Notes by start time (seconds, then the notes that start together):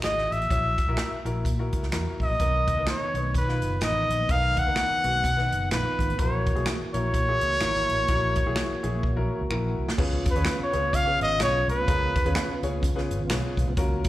0.02 G#1 E4 F#4 G#4 D#5, finger snap, snare, closed hi-hat
0.18 snare
0.31 A1 E5, closed hi-hat
0.42 closed hi-hat
0.50 A#1 E4 F#4 C#5, kick, closed hi-hat
0.78 kick, closed hi-hat
0.87 A#1 E4 F#4 A#4
0.97 finger snap, snare, closed hi-hat
1.12 muted fingered electric bass stroke
1.25 A#1 E4 F#4 A#4, closed hi-hat
1.45 A#2, kick, closed hi-hat
1.59 E4 F#4 A#4
1.73 C#2, kick, closed hi-hat
1.83 snare
1.92 E2 E4 F#4 A#4, finger snap, snare, closed hi-hat
2.20 A1 D#5, kick, open hi-hat
2.30 A#1
2.40 B1 D#3 B3 D#4 A#4, kick, closed hi-hat
2.68 kick, closed hi-hat
2.76 C#2 B3 D#4 A#4
2.87 C#5, finger snap, snare, closed hi-hat
3.01 muted fingered electric bass stroke
3.14 B1 B3 D#4 C#5, closed hi-hat
3.34 B2 B4, kick, closed hi-hat
3.48 B3 D#4 F4, snare
3.62 F#1, closed hi-hat
3.81 A1 B3 D#4 A#4 D#5, finger snap, snare, closed hi-hat
4.09 A#1, closed hi-hat
4.29 B1 B3 D#4 A#4 F5, kick, closed hi-hat
4.57 F#5, kick, closed hi-hat
4.67 C#2 B3 D#4 A#4
4.76 finger snap, snare, closed hi-hat
4.90 muted fingered electric bass stroke
5.04 B1 B3 D#4 F#4, closed hi-hat
5.24 B2, kick, closed hi-hat
5.37 B3 D#4 B4, snare
5.52 F#1, closed hi-hat
5.71 A#1 B3 D#4 F4 B4, finger snap, snare, closed hi-hat
5.99 G#1, kick, closed hi-hat
6.09 A1, closed hi-hat
6.18 A#1 E3 A#3 E4 F#4 A#4 C#5, kick, closed hi-hat
6.46 kick, closed hi-hat
6.55 B1 E4 F#4 G#4, closed hi-hat
6.66 finger snap, snare, closed hi-hat
6.80 muted fingered electric bass stroke
6.94 A#1 E4 F#4 A#4 C#5, closed hi-hat
7.14 A#2, kick, closed hi-hat
7.28 E4 F#4 G#4
7.41 C#2, closed hi-hat
7.51 snare
7.60 G#1 E4 F#4 A#4, finger snap, snare, closed hi-hat
7.75 snare
7.89 A1, closed hi-hat
8.08 A#1 E4 F#4 A#4, kick, closed hi-hat
8.36 kick, closed hi-hat
8.46 B1 E4 F#4 G#4
8.56 finger snap, snare, closed hi-hat
8.70 muted fingered electric bass stroke
8.83 A#1 E4 F#4 G#4, closed hi-hat
9.03 A#2, kick
9.16 A#1 E4 F#4 A#4
9.41 C#2
9.51 A#1 E4 F#4 A#4, finger snap
9.78 C2
9.89 snare
9.98 C#2 C#3 B3 C#4 F4 G#4 B4, kick, crash
10.26 kick, closed hi-hat
10.30 B4
10.35 D#2 C#4 F4 G#4 C#5, closed hi-hat
10.45 finger snap, snare, closed hi-hat
10.60 C#5, muted fingered electric bass stroke
10.73 C#2 C#4 F4 G#4 B4, closed hi-hat
10.93 C#3 F5, kick, closed hi-hat
11.06 C#4 F4 G#4 B4
11.21 G#1 D#5, closed hi-hat
11.40 B1 C#4 F4 G#4 C#5, finger snap, snare, closed hi-hat
11.68 C2 B4, closed hi-hat
11.87 C#2 C#4 F4 G#4 A#4, kick, closed hi-hat
12.16 kick, closed hi-hat
12.25 D#2 C#4 F4 G#4 B4, closed hi-hat
12.35 finger snap, snare, closed hi-hat
12.48 muted fingered electric bass stroke
12.63 C#2 C#4 F4 G#4 C#5, closed hi-hat
12.83 C#3, kick, closed hi-hat
12.95 C#4 F4 G#4 B4, snare
13.11 G#1, closed hi-hat
13.30 B1 C#4 F4 G#4 B4, finger snap, snare, closed hi-hat
13.57 B1, kick, closed hi-hat
13.68 C2
13.77 C#2 F#3 A#3 C#4 F4 F#4 A#4, kick, closed hi-hat
14.04 kick, closed hi-hat